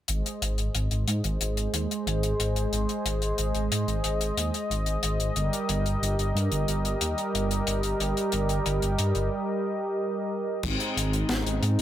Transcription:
0.08 detuned saw bass G#1, analog synth pad G#3 G#4 C5 D#5, closed hi-hat
0.26 closed hi-hat
0.42 detuned saw bass G#1, closed hi-hat
0.58 closed hi-hat
0.75 detuned saw bass G#1, closed hi-hat
0.91 detuned saw bass G#1, closed hi-hat
1.08 detuned saw bass G#2, closed hi-hat
1.24 detuned saw bass G#1, closed hi-hat
1.41 detuned saw bass G#1, closed hi-hat
1.57 closed hi-hat
1.74 detuned saw bass D#2, closed hi-hat
1.91 closed hi-hat
2.07 detuned saw bass G#1, closed hi-hat
2.23 closed hi-hat
2.40 detuned saw bass G#1, closed hi-hat
2.56 closed hi-hat
2.72 detuned saw bass G#1, closed hi-hat
2.89 closed hi-hat
3.05 detuned saw bass G#1, closed hi-hat
3.22 closed hi-hat
3.38 detuned saw bass G#1, closed hi-hat
3.55 detuned saw bass G#1, closed hi-hat
3.71 detuned saw bass G#2, closed hi-hat
3.88 detuned saw bass G#1, closed hi-hat
4.04 detuned saw bass G#1, closed hi-hat
4.21 closed hi-hat
4.37 detuned saw bass D#2, closed hi-hat
4.54 closed hi-hat
4.70 detuned saw bass G#1, closed hi-hat
4.86 closed hi-hat
5.03 detuned saw bass G#1, closed hi-hat
5.20 closed hi-hat
5.36 detuned saw bass G1, analog synth pad G3 G4 A#4, closed hi-hat
5.53 closed hi-hat
5.69 detuned saw bass G1, closed hi-hat
5.86 closed hi-hat
6.02 detuned saw bass G1, closed hi-hat
6.19 detuned saw bass G1, closed hi-hat
6.35 detuned saw bass G2, closed hi-hat
6.52 detuned saw bass G1, closed hi-hat
6.68 detuned saw bass G1, closed hi-hat
6.85 closed hi-hat
7.01 detuned saw bass D#2, closed hi-hat
7.18 closed hi-hat
7.34 detuned saw bass G1, closed hi-hat
7.51 closed hi-hat
7.67 detuned saw bass G1, closed hi-hat
7.83 closed hi-hat
8.00 detuned saw bass G1, closed hi-hat
8.17 closed hi-hat
8.32 detuned saw bass G1, closed hi-hat
8.49 closed hi-hat
8.66 detuned saw bass G1, closed hi-hat
8.82 detuned saw bass G1, closed hi-hat
8.99 detuned saw bass G2, closed hi-hat
9.15 detuned saw bass G1, closed hi-hat
10.63 detuned saw bass G#1, analog synth pad G#3 C4 D#4, kick, closed hi-hat, crash
10.80 closed hi-hat
10.97 detuned saw bass G#1, closed hi-hat
11.13 closed hi-hat
11.29 detuned saw bass G#1, snare, closed hi-hat
11.46 detuned saw bass G#1, closed hi-hat
11.63 detuned saw bass G#2, closed hi-hat

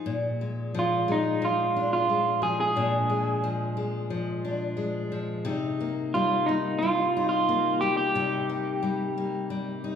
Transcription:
Already playing: steel-string acoustic guitar F3 D#4 G#4
0.06 steel-string acoustic guitar A#2
0.41 steel-string acoustic guitar G#3
0.75 steel-string acoustic guitar F3
0.79 clean electric guitar F4
1.08 steel-string acoustic guitar G#3, clean electric guitar D#4
1.42 steel-string acoustic guitar F3, clean electric guitar F4
1.76 steel-string acoustic guitar D4
1.93 clean electric guitar F4
2.09 steel-string acoustic guitar G#3
2.42 steel-string acoustic guitar F3, clean electric guitar G#4
2.60 clean electric guitar G#4
2.76 steel-string acoustic guitar A#2 D4
3.10 steel-string acoustic guitar G#3
3.44 steel-string acoustic guitar F3
3.77 steel-string acoustic guitar G#3
4.10 steel-string acoustic guitar F3
4.45 steel-string acoustic guitar D4
4.77 steel-string acoustic guitar G#3
5.12 steel-string acoustic guitar F3
5.45 steel-string acoustic guitar C3 D#4
5.80 steel-string acoustic guitar A#3
6.14 steel-string acoustic guitar G3, clean electric guitar F4
6.46 steel-string acoustic guitar A#3, clean electric guitar D#4
6.79 steel-string acoustic guitar G3, clean electric guitar F4
7.17 steel-string acoustic guitar D#4
7.29 clean electric guitar F4
7.49 steel-string acoustic guitar A#3
7.81 steel-string acoustic guitar G3, clean electric guitar G4
7.97 clean electric guitar G4
8.16 steel-string acoustic guitar C3 D#4
8.50 steel-string acoustic guitar A#3
8.83 steel-string acoustic guitar G3
9.18 steel-string acoustic guitar A#3
9.50 steel-string acoustic guitar G3
9.84 steel-string acoustic guitar D#4

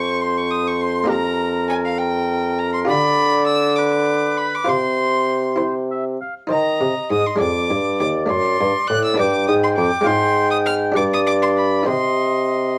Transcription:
Already playing: harpsichord F2 C4 F4 G#4, bassoon F2, oboe C5, violin C#6
0.22 violin C6
0.38 violin C#6
0.51 violin D#6
0.68 violin C#6
0.81 violin C6
1.04 harpsichord A#3 D#4 G4
1.09 oboe A#4, violin A#5
1.69 violin G#5
1.85 violin F5
1.98 oboe A#4, violin G5
2.58 violin A#5
2.73 violin C6
2.85 harpsichord D3 F4 G4, bassoon D3, violin B5
2.89 oboe D5
3.46 violin E6
3.76 oboe B4, violin D6
4.38 violin B5
4.55 violin D6
4.65 harpsichord C3 F4 C5, bassoon C3
4.69 oboe C5, violin C6
5.56 harpsichord E4 C5
5.61 oboe C5
5.91 oboe E5
6.21 oboe F5
6.47 harpsichord D#3 D#4 C5, bassoon D#3, oboe D#5
6.51 violin A#5
6.81 harpsichord C3, bassoon C3
7.11 harpsichord G#2, bassoon G#2, violin D#6
7.27 violin C6
7.36 harpsichord G#3 D4 D5, violin D6
7.40 harpsichord F2, bassoon F2, oboe D5
7.70 harpsichord G2, bassoon G2
8.00 harpsichord D#2, bassoon D#2, violin D6
8.26 bassoon F#2, harpsichord A3 D4 D5, violin C6
8.30 harpsichord F#2
8.60 bassoon G2, harpsichord G2
8.88 bassoon A2, harpsichord A2, violin F#6
9.04 violin E6
9.14 harpsichord B3 D4 D5
9.19 bassoon G2, harpsichord G2, oboe G5, violin D6
9.48 bassoon G#2, harpsichord G#2, violin D#6
9.63 violin C6
9.76 bassoon F2, harpsichord F2, violin D6
10.01 harpsichord G#3 C4 F4
10.06 bassoon G#2, harpsichord G#2 F5, violin C6
10.51 violin D#6
10.66 violin F6
10.92 harpsichord D4 G4 D5, oboe D5
10.96 harpsichord G2, bassoon G2, violin D6
11.13 violin D#6
11.26 violin D6
11.42 violin C6
11.57 violin B5
11.83 harpsichord D#4 G4 C5, oboe D#5
11.87 bassoon C3, harpsichord C3, violin C6

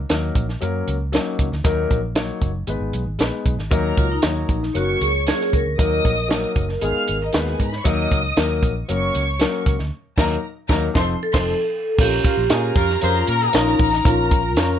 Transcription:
0.09 fingered electric bass D#2, upright piano F#3 A#3 D#4 A#4, snare, closed hi-hat
0.35 fingered electric bass A#1, kick, closed hi-hat
0.49 snare
0.61 fingered electric bass F#2, upright piano F#3 A#3 C#4 A#4, closed hi-hat
0.88 fingered electric bass C#2, closed hi-hat
1.12 upright piano F#3 A#3 C#4 D#4, snare, closed hi-hat
1.39 fingered electric bass C#2, kick, closed hi-hat
1.52 fingered electric bass D2, snare
1.64 fingered electric bass D#2, upright piano F#3 A#3 D#4 A#4, kick, closed hi-hat
1.91 fingered electric bass A#1, kick, closed hi-hat
2.15 upright piano F#3 A#3 D#4 C#5, snare, closed hi-hat
2.41 fingered electric bass F#1, kick, closed hi-hat
2.67 fingered electric bass G#1, upright piano G#3 B3 D#4 B4, closed hi-hat
2.80 fingered electric bass G#1
2.93 fingered electric bass B1, closed hi-hat
3.06 fingered electric bass G#1
3.18 fingered electric bass A#1, upright piano G#3 B3 D#4 B4, snare, closed hi-hat
3.46 fingered electric bass B1, kick, closed hi-hat
3.57 fingered electric bass G#1, snare
3.71 fingered electric bass D#2, upright piano F#3 A#3 D#4 A#4, violin section A#4 A#5, kick, closed hi-hat
3.97 fingered electric bass C#2, vibraphone F4, kick, closed hi-hat
4.12 vibraphone D#4
4.22 fingered electric bass D#2, upright piano F#3 A#3 D#4 C#5, snare, closed hi-hat
4.49 fingered electric bass A#1, kick, closed hi-hat
4.63 snare
4.74 fingered electric bass F#1, upright piano F#3 A#3 C#4 A#4, vibraphone F#4, violin section C#5 C#6, closed hi-hat
5.01 fingered electric bass C#2, vibraphone G#4, closed hi-hat
5.26 upright piano F#3 A#3 C#4 A#4, vibraphone G#4, snare, closed hi-hat
5.41 snare
5.53 fingered electric bass C#2, vibraphone A#4, kick, closed hi-hat
5.66 fingered electric bass D2
5.78 fingered electric bass D#2, upright piano F#3 A#3 D#4 A#4, violin section D#5 D#6, kick, closed hi-hat
6.05 fingered electric bass A#1, kick, closed hi-hat
6.28 upright piano F#3 A#3 D#4 A#4, snare, closed hi-hat
6.56 fingered electric bass F#1, kick, closed hi-hat
6.69 snare
6.81 fingered electric bass G#1, upright piano G#3 B3 D#4 G#4, violin section F5 F6, closed hi-hat
7.08 fingered electric bass G#1, closed hi-hat
7.24 violin section D#4 D#5
7.32 fingered electric bass D#2, upright piano G#3 B3 D#4 B4, violin section F4 F5, snare, closed hi-hat
7.44 violin section F#4 F#5, snare
7.52 violin section G#4 G#5
7.60 fingered electric bass G#2, violin section A#4 A#5, kick, closed hi-hat
7.69 violin section B4 B5, snare
7.77 violin section C#5 C#6
7.84 fingered electric bass D#2, upright piano F#3 A#3 D#4 A#4, violin section D#5 D#6, kick, closed hi-hat
8.12 fingered electric bass C#2, kick, closed hi-hat
8.37 fingered electric bass D#2, upright piano F#3 A#3 D#4 A#4, snare, closed hi-hat
8.63 fingered electric bass A#1, kick, closed hi-hat
8.88 fingered electric bass F#1, upright piano F#3 A#3 C#4 A#4, violin section C#5 C#6, closed hi-hat
9.15 fingered electric bass C#2, closed hi-hat
9.39 upright piano F#3 A#3 C#4 A#4, snare, closed hi-hat
9.66 fingered electric bass C#2, kick, closed hi-hat
9.79 fingered electric bass D2, snare
10.17 fingered electric bass D#2, upright piano F#3 A#3 D#4 A#4, violin section A#4 A#5, kick, snare, crash
10.69 fingered electric bass D#2, upright piano F#3 A#3 D#4 A#4, violin section A#4 A#5, kick, snare
10.94 fingered electric bass F1, upright piano F3 C4 D#4 A4, violin section C5 C6, kick, snare
11.23 vibraphone A4
11.33 fingered electric bass F1, upright piano F3 C4 D#4 A4, violin section C5 C6, kick, snare, crash
11.98 fingered electric bass A#1, upright piano C#4 F4 A#4, vibraphone G4, violin section A#4 A#5, kick, crash
12.24 saxophone section A#3 C#4 F4, kick, closed hi-hat
12.37 fingered electric bass A#1
12.50 fingered electric bass A#2, upright piano C#4 F4 A#4, saxophone section C#4 F4 G#4, snare, closed hi-hat
12.76 fingered electric bass F2, saxophone section C#4 F4 A#4, kick, closed hi-hat
12.90 snare
13.01 fingered electric bass F2, upright piano C#4 F4 A#4, saxophone section F4 G#4 C5, vibraphone F4, closed hi-hat
13.27 fingered electric bass A#2, saxophone section C#4 F4 A#4, closed hi-hat
13.52 fingered electric bass A#1, upright piano C#4 F4 A#4, vibraphone D#4, snare, closed hi-hat
13.67 snare
13.79 fingered electric bass A1, kick, open hi-hat
13.93 snare
14.04 fingered electric bass A#1, upright piano C#4 F4 A#4, vibraphone F4, kick, closed hi-hat
14.31 kick, closed hi-hat
14.57 fingered electric bass F2, upright piano C#4 F4 A#4, vibraphone C#4, snare, closed hi-hat

